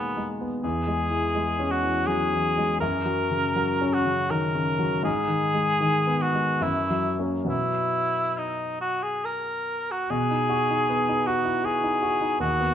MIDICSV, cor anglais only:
0, 0, Header, 1, 2, 480
1, 0, Start_track
1, 0, Key_signature, 5, "major"
1, 0, Tempo, 715137
1, 430, Time_signature, 3, 2, 24, 8
1, 1398, Tempo, 745342
1, 3798, Tempo, 815217
1, 4278, Tempo, 869565
1, 6198, Tempo, 767263
1, 7848, End_track
2, 0, Start_track
2, 0, Title_t, "Cor anglais"
2, 0, Program_c, 0, 69
2, 0, Note_on_c, 0, 59, 53
2, 191, Note_off_c, 0, 59, 0
2, 425, Note_on_c, 0, 68, 70
2, 1147, Note_on_c, 0, 66, 62
2, 1157, Note_off_c, 0, 68, 0
2, 1386, Note_on_c, 0, 68, 74
2, 1396, Note_off_c, 0, 66, 0
2, 1858, Note_off_c, 0, 68, 0
2, 1862, Note_on_c, 0, 70, 75
2, 2588, Note_on_c, 0, 66, 66
2, 2598, Note_off_c, 0, 70, 0
2, 2827, Note_on_c, 0, 70, 71
2, 2836, Note_off_c, 0, 66, 0
2, 3302, Note_off_c, 0, 70, 0
2, 3306, Note_on_c, 0, 68, 82
2, 4037, Note_on_c, 0, 66, 65
2, 4046, Note_off_c, 0, 68, 0
2, 4278, Note_on_c, 0, 64, 59
2, 4287, Note_off_c, 0, 66, 0
2, 4584, Note_off_c, 0, 64, 0
2, 4754, Note_on_c, 0, 64, 65
2, 5243, Note_on_c, 0, 63, 48
2, 5252, Note_off_c, 0, 64, 0
2, 5480, Note_off_c, 0, 63, 0
2, 5484, Note_on_c, 0, 66, 62
2, 5604, Note_on_c, 0, 68, 57
2, 5612, Note_off_c, 0, 66, 0
2, 5726, Note_on_c, 0, 70, 66
2, 5734, Note_off_c, 0, 68, 0
2, 6093, Note_on_c, 0, 66, 60
2, 6101, Note_off_c, 0, 70, 0
2, 6199, Note_on_c, 0, 68, 76
2, 6208, Note_off_c, 0, 66, 0
2, 6927, Note_on_c, 0, 66, 70
2, 6936, Note_off_c, 0, 68, 0
2, 7165, Note_on_c, 0, 68, 70
2, 7174, Note_off_c, 0, 66, 0
2, 7636, Note_off_c, 0, 68, 0
2, 7640, Note_on_c, 0, 66, 73
2, 7848, Note_off_c, 0, 66, 0
2, 7848, End_track
0, 0, End_of_file